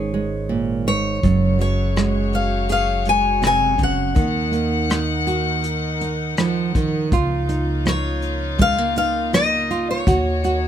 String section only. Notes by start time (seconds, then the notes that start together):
1.22 F#3 F#4 G#4 C#5
4.18 D#3 D#4 A#4 F#5
7.13 C#3 A#3 D#4 F4
10.07 D#3 F#4 C#5